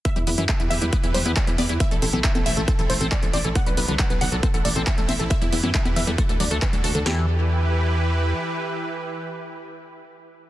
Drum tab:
HH |xxoxxxoxxxoxxxox|xxoxxxoxxxoxxxox|xxoxxxoxxxoxxxox|xxoxxxoxxxoxxxo-|
CP |----x-------x---|----x-------x---|----x-------x---|----x-------x---|
SD |----------------|----------------|----------------|----------------|
CG |--------------o-|---o-o----------|--------------o-|---o-o----------|
BD |o---o---o---o---|o---o---o---o---|o---o---o---o---|o---o---o---o---|

HH |----------------|----------------|
CP |----------------|----------------|
SD |o---------------|----------------|
CG |----------------|----------------|
BD |----------------|----------------|